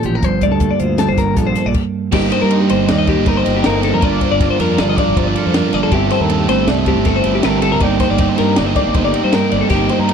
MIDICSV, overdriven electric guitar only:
0, 0, Header, 1, 2, 480
1, 0, Start_track
1, 0, Tempo, 378788
1, 299, Time_signature, 5, 2, 24, 8
1, 12843, End_track
2, 0, Start_track
2, 0, Title_t, "Overdriven electric guitar"
2, 0, Program_c, 0, 29
2, 2687, Note_on_c, 0, 55, 81
2, 2700, Note_on_c, 0, 60, 84
2, 2711, Note_on_c, 0, 67, 93
2, 2716, Note_on_c, 0, 72, 87
2, 2731, Note_on_c, 0, 75, 97
2, 2904, Note_off_c, 0, 75, 0
2, 2919, Note_on_c, 0, 75, 74
2, 2929, Note_off_c, 0, 72, 0
2, 2944, Note_on_c, 0, 72, 63
2, 2946, Note_off_c, 0, 67, 0
2, 2962, Note_on_c, 0, 67, 57
2, 3147, Note_off_c, 0, 55, 0
2, 3156, Note_off_c, 0, 60, 0
2, 3162, Note_on_c, 0, 55, 86
2, 3167, Note_off_c, 0, 67, 0
2, 3172, Note_on_c, 0, 60, 89
2, 3178, Note_off_c, 0, 72, 0
2, 3182, Note_off_c, 0, 75, 0
2, 3182, Note_on_c, 0, 67, 81
2, 3193, Note_on_c, 0, 72, 88
2, 3197, Note_on_c, 0, 75, 92
2, 3387, Note_off_c, 0, 75, 0
2, 3402, Note_on_c, 0, 75, 70
2, 3415, Note_off_c, 0, 72, 0
2, 3430, Note_on_c, 0, 72, 59
2, 3431, Note_off_c, 0, 67, 0
2, 3447, Note_on_c, 0, 67, 50
2, 3636, Note_off_c, 0, 60, 0
2, 3650, Note_off_c, 0, 67, 0
2, 3651, Note_on_c, 0, 60, 65
2, 3654, Note_off_c, 0, 55, 0
2, 3661, Note_off_c, 0, 72, 0
2, 3666, Note_on_c, 0, 67, 74
2, 3677, Note_off_c, 0, 75, 0
2, 3677, Note_on_c, 0, 72, 76
2, 3692, Note_on_c, 0, 75, 83
2, 3876, Note_off_c, 0, 75, 0
2, 3890, Note_off_c, 0, 72, 0
2, 3891, Note_on_c, 0, 75, 85
2, 3901, Note_off_c, 0, 67, 0
2, 3906, Note_on_c, 0, 72, 88
2, 3914, Note_off_c, 0, 60, 0
2, 3916, Note_on_c, 0, 67, 82
2, 3929, Note_on_c, 0, 60, 69
2, 3939, Note_on_c, 0, 55, 75
2, 4107, Note_off_c, 0, 60, 0
2, 4122, Note_on_c, 0, 60, 71
2, 4123, Note_off_c, 0, 67, 0
2, 4136, Note_off_c, 0, 72, 0
2, 4139, Note_on_c, 0, 67, 80
2, 4148, Note_off_c, 0, 75, 0
2, 4152, Note_on_c, 0, 72, 72
2, 4164, Note_on_c, 0, 75, 76
2, 4349, Note_off_c, 0, 75, 0
2, 4364, Note_on_c, 0, 75, 76
2, 4369, Note_off_c, 0, 72, 0
2, 4384, Note_on_c, 0, 72, 66
2, 4389, Note_off_c, 0, 67, 0
2, 4403, Note_off_c, 0, 55, 0
2, 4405, Note_on_c, 0, 67, 58
2, 4594, Note_on_c, 0, 55, 86
2, 4598, Note_off_c, 0, 60, 0
2, 4604, Note_off_c, 0, 67, 0
2, 4613, Note_on_c, 0, 60, 94
2, 4614, Note_off_c, 0, 72, 0
2, 4619, Note_on_c, 0, 67, 93
2, 4621, Note_off_c, 0, 75, 0
2, 4629, Note_on_c, 0, 72, 102
2, 4637, Note_on_c, 0, 75, 102
2, 4829, Note_off_c, 0, 75, 0
2, 4845, Note_on_c, 0, 75, 64
2, 4847, Note_off_c, 0, 72, 0
2, 4862, Note_on_c, 0, 72, 60
2, 4870, Note_off_c, 0, 67, 0
2, 4885, Note_on_c, 0, 67, 52
2, 5075, Note_off_c, 0, 55, 0
2, 5081, Note_off_c, 0, 75, 0
2, 5082, Note_on_c, 0, 58, 95
2, 5085, Note_off_c, 0, 60, 0
2, 5090, Note_off_c, 0, 72, 0
2, 5097, Note_on_c, 0, 62, 87
2, 5101, Note_off_c, 0, 67, 0
2, 5107, Note_on_c, 0, 65, 98
2, 5112, Note_on_c, 0, 70, 102
2, 5124, Note_on_c, 0, 74, 88
2, 5305, Note_off_c, 0, 74, 0
2, 5321, Note_on_c, 0, 74, 75
2, 5330, Note_off_c, 0, 70, 0
2, 5345, Note_on_c, 0, 70, 66
2, 5347, Note_off_c, 0, 65, 0
2, 5362, Note_on_c, 0, 65, 58
2, 5547, Note_off_c, 0, 58, 0
2, 5559, Note_off_c, 0, 62, 0
2, 5562, Note_on_c, 0, 58, 93
2, 5570, Note_off_c, 0, 65, 0
2, 5575, Note_on_c, 0, 62, 89
2, 5578, Note_off_c, 0, 70, 0
2, 5585, Note_on_c, 0, 65, 100
2, 5587, Note_off_c, 0, 74, 0
2, 5594, Note_on_c, 0, 70, 106
2, 5603, Note_on_c, 0, 74, 101
2, 5786, Note_off_c, 0, 74, 0
2, 5801, Note_on_c, 0, 74, 73
2, 5812, Note_off_c, 0, 70, 0
2, 5827, Note_on_c, 0, 70, 66
2, 5829, Note_off_c, 0, 65, 0
2, 5844, Note_on_c, 0, 65, 55
2, 6039, Note_off_c, 0, 62, 0
2, 6052, Note_off_c, 0, 65, 0
2, 6053, Note_off_c, 0, 58, 0
2, 6054, Note_on_c, 0, 62, 71
2, 6067, Note_on_c, 0, 65, 80
2, 6069, Note_off_c, 0, 70, 0
2, 6077, Note_off_c, 0, 74, 0
2, 6084, Note_on_c, 0, 70, 88
2, 6093, Note_on_c, 0, 74, 77
2, 6276, Note_off_c, 0, 74, 0
2, 6291, Note_off_c, 0, 70, 0
2, 6291, Note_on_c, 0, 74, 100
2, 6300, Note_off_c, 0, 65, 0
2, 6307, Note_on_c, 0, 70, 84
2, 6310, Note_off_c, 0, 62, 0
2, 6315, Note_on_c, 0, 65, 82
2, 6325, Note_on_c, 0, 62, 72
2, 6331, Note_on_c, 0, 58, 81
2, 6529, Note_off_c, 0, 62, 0
2, 6545, Note_on_c, 0, 62, 69
2, 6548, Note_off_c, 0, 65, 0
2, 6560, Note_off_c, 0, 70, 0
2, 6563, Note_on_c, 0, 65, 85
2, 6570, Note_off_c, 0, 74, 0
2, 6575, Note_on_c, 0, 70, 81
2, 6585, Note_on_c, 0, 74, 95
2, 6769, Note_off_c, 0, 74, 0
2, 6784, Note_on_c, 0, 74, 80
2, 6793, Note_off_c, 0, 70, 0
2, 6797, Note_off_c, 0, 58, 0
2, 6808, Note_off_c, 0, 65, 0
2, 6808, Note_on_c, 0, 70, 73
2, 6823, Note_on_c, 0, 65, 61
2, 7011, Note_off_c, 0, 62, 0
2, 7015, Note_on_c, 0, 58, 100
2, 7017, Note_off_c, 0, 65, 0
2, 7026, Note_on_c, 0, 62, 104
2, 7027, Note_off_c, 0, 70, 0
2, 7033, Note_on_c, 0, 65, 102
2, 7040, Note_off_c, 0, 74, 0
2, 7042, Note_on_c, 0, 70, 99
2, 7055, Note_on_c, 0, 74, 104
2, 7245, Note_off_c, 0, 74, 0
2, 7261, Note_on_c, 0, 74, 64
2, 7266, Note_off_c, 0, 70, 0
2, 7281, Note_on_c, 0, 70, 59
2, 7283, Note_off_c, 0, 65, 0
2, 7298, Note_on_c, 0, 65, 55
2, 7484, Note_off_c, 0, 58, 0
2, 7487, Note_off_c, 0, 74, 0
2, 7490, Note_off_c, 0, 62, 0
2, 7490, Note_on_c, 0, 57, 91
2, 7497, Note_off_c, 0, 70, 0
2, 7506, Note_off_c, 0, 65, 0
2, 7506, Note_on_c, 0, 60, 99
2, 7522, Note_on_c, 0, 64, 107
2, 7531, Note_on_c, 0, 69, 94
2, 7718, Note_off_c, 0, 69, 0
2, 7733, Note_on_c, 0, 69, 74
2, 7739, Note_off_c, 0, 64, 0
2, 7755, Note_on_c, 0, 64, 76
2, 7765, Note_off_c, 0, 60, 0
2, 7770, Note_on_c, 0, 60, 66
2, 7951, Note_off_c, 0, 57, 0
2, 7966, Note_on_c, 0, 57, 92
2, 7979, Note_off_c, 0, 60, 0
2, 7980, Note_off_c, 0, 64, 0
2, 7984, Note_on_c, 0, 60, 94
2, 7991, Note_off_c, 0, 69, 0
2, 7995, Note_on_c, 0, 64, 101
2, 8007, Note_on_c, 0, 69, 111
2, 8190, Note_off_c, 0, 69, 0
2, 8205, Note_on_c, 0, 69, 69
2, 8214, Note_off_c, 0, 64, 0
2, 8230, Note_on_c, 0, 64, 62
2, 8243, Note_off_c, 0, 60, 0
2, 8248, Note_on_c, 0, 60, 62
2, 8430, Note_off_c, 0, 57, 0
2, 8446, Note_on_c, 0, 57, 74
2, 8453, Note_off_c, 0, 60, 0
2, 8459, Note_on_c, 0, 60, 72
2, 8460, Note_off_c, 0, 64, 0
2, 8468, Note_off_c, 0, 69, 0
2, 8475, Note_on_c, 0, 64, 81
2, 8483, Note_on_c, 0, 69, 81
2, 8660, Note_off_c, 0, 69, 0
2, 8675, Note_on_c, 0, 69, 92
2, 8679, Note_off_c, 0, 64, 0
2, 8694, Note_on_c, 0, 64, 88
2, 8699, Note_off_c, 0, 60, 0
2, 8702, Note_off_c, 0, 57, 0
2, 8704, Note_on_c, 0, 60, 75
2, 8717, Note_on_c, 0, 57, 75
2, 8902, Note_off_c, 0, 57, 0
2, 8918, Note_on_c, 0, 57, 77
2, 8927, Note_off_c, 0, 60, 0
2, 8931, Note_off_c, 0, 64, 0
2, 8932, Note_on_c, 0, 60, 72
2, 8943, Note_off_c, 0, 69, 0
2, 8946, Note_on_c, 0, 64, 78
2, 8958, Note_on_c, 0, 69, 96
2, 9148, Note_off_c, 0, 69, 0
2, 9163, Note_on_c, 0, 69, 68
2, 9168, Note_off_c, 0, 64, 0
2, 9183, Note_on_c, 0, 64, 68
2, 9195, Note_off_c, 0, 60, 0
2, 9200, Note_on_c, 0, 60, 61
2, 9380, Note_off_c, 0, 57, 0
2, 9395, Note_on_c, 0, 57, 90
2, 9407, Note_off_c, 0, 60, 0
2, 9410, Note_off_c, 0, 64, 0
2, 9412, Note_on_c, 0, 60, 101
2, 9419, Note_off_c, 0, 69, 0
2, 9425, Note_on_c, 0, 64, 93
2, 9435, Note_on_c, 0, 69, 103
2, 9612, Note_off_c, 0, 69, 0
2, 9627, Note_on_c, 0, 69, 73
2, 9639, Note_off_c, 0, 64, 0
2, 9654, Note_on_c, 0, 64, 67
2, 9666, Note_off_c, 0, 60, 0
2, 9672, Note_on_c, 0, 60, 57
2, 9870, Note_off_c, 0, 69, 0
2, 9873, Note_off_c, 0, 57, 0
2, 9879, Note_on_c, 0, 55, 80
2, 9883, Note_off_c, 0, 64, 0
2, 9891, Note_off_c, 0, 60, 0
2, 9896, Note_on_c, 0, 60, 82
2, 9909, Note_on_c, 0, 63, 94
2, 9917, Note_on_c, 0, 67, 93
2, 10124, Note_off_c, 0, 67, 0
2, 10129, Note_on_c, 0, 67, 74
2, 10142, Note_off_c, 0, 63, 0
2, 10147, Note_on_c, 0, 63, 68
2, 10162, Note_off_c, 0, 60, 0
2, 10167, Note_on_c, 0, 60, 62
2, 10350, Note_off_c, 0, 55, 0
2, 10355, Note_on_c, 0, 55, 93
2, 10364, Note_off_c, 0, 60, 0
2, 10369, Note_on_c, 0, 60, 94
2, 10378, Note_off_c, 0, 63, 0
2, 10383, Note_on_c, 0, 63, 83
2, 10390, Note_off_c, 0, 67, 0
2, 10395, Note_on_c, 0, 67, 98
2, 10586, Note_off_c, 0, 67, 0
2, 10591, Note_on_c, 0, 67, 70
2, 10613, Note_off_c, 0, 63, 0
2, 10618, Note_on_c, 0, 63, 63
2, 10633, Note_off_c, 0, 60, 0
2, 10638, Note_on_c, 0, 60, 64
2, 10842, Note_off_c, 0, 55, 0
2, 10847, Note_on_c, 0, 55, 73
2, 10856, Note_off_c, 0, 60, 0
2, 10861, Note_on_c, 0, 60, 74
2, 10871, Note_off_c, 0, 63, 0
2, 10876, Note_on_c, 0, 63, 86
2, 10879, Note_off_c, 0, 67, 0
2, 10884, Note_on_c, 0, 67, 87
2, 11060, Note_off_c, 0, 67, 0
2, 11075, Note_off_c, 0, 63, 0
2, 11075, Note_on_c, 0, 67, 89
2, 11090, Note_on_c, 0, 63, 83
2, 11091, Note_off_c, 0, 60, 0
2, 11101, Note_off_c, 0, 55, 0
2, 11106, Note_on_c, 0, 60, 81
2, 11117, Note_on_c, 0, 55, 69
2, 11315, Note_off_c, 0, 55, 0
2, 11327, Note_off_c, 0, 60, 0
2, 11330, Note_on_c, 0, 55, 69
2, 11340, Note_off_c, 0, 63, 0
2, 11342, Note_on_c, 0, 60, 74
2, 11350, Note_off_c, 0, 67, 0
2, 11356, Note_on_c, 0, 63, 82
2, 11365, Note_on_c, 0, 67, 82
2, 11552, Note_off_c, 0, 67, 0
2, 11567, Note_on_c, 0, 67, 73
2, 11576, Note_off_c, 0, 63, 0
2, 11591, Note_on_c, 0, 63, 66
2, 11594, Note_off_c, 0, 60, 0
2, 11610, Note_on_c, 0, 60, 61
2, 11795, Note_off_c, 0, 55, 0
2, 11811, Note_on_c, 0, 55, 94
2, 11813, Note_off_c, 0, 60, 0
2, 11828, Note_on_c, 0, 60, 81
2, 11831, Note_off_c, 0, 63, 0
2, 11841, Note_off_c, 0, 67, 0
2, 11846, Note_on_c, 0, 63, 92
2, 11857, Note_on_c, 0, 67, 98
2, 12032, Note_off_c, 0, 67, 0
2, 12048, Note_on_c, 0, 67, 59
2, 12056, Note_off_c, 0, 63, 0
2, 12071, Note_off_c, 0, 60, 0
2, 12071, Note_on_c, 0, 63, 58
2, 12086, Note_on_c, 0, 60, 47
2, 12270, Note_off_c, 0, 55, 0
2, 12280, Note_off_c, 0, 67, 0
2, 12282, Note_off_c, 0, 60, 0
2, 12286, Note_on_c, 0, 55, 94
2, 12292, Note_off_c, 0, 63, 0
2, 12298, Note_on_c, 0, 60, 90
2, 12312, Note_on_c, 0, 63, 86
2, 12324, Note_on_c, 0, 67, 93
2, 12510, Note_off_c, 0, 67, 0
2, 12525, Note_on_c, 0, 67, 67
2, 12537, Note_off_c, 0, 63, 0
2, 12552, Note_off_c, 0, 60, 0
2, 12552, Note_on_c, 0, 63, 64
2, 12567, Note_on_c, 0, 60, 60
2, 12751, Note_off_c, 0, 55, 0
2, 12764, Note_off_c, 0, 60, 0
2, 12766, Note_on_c, 0, 55, 79
2, 12774, Note_off_c, 0, 63, 0
2, 12779, Note_on_c, 0, 60, 82
2, 12786, Note_off_c, 0, 67, 0
2, 12789, Note_on_c, 0, 63, 89
2, 12801, Note_on_c, 0, 67, 97
2, 12843, Note_off_c, 0, 55, 0
2, 12843, Note_off_c, 0, 60, 0
2, 12843, Note_off_c, 0, 63, 0
2, 12843, Note_off_c, 0, 67, 0
2, 12843, End_track
0, 0, End_of_file